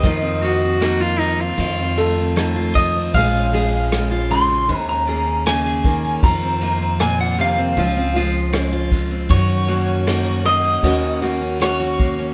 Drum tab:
RD |xxxxxxxx|xxxxxxxx|xxxxxxxx|xxxxxxxx|
SD |--r---r-|--r---r-|--r---r-|--r---r-|
BD |o------o|o------o|o------o|o------o|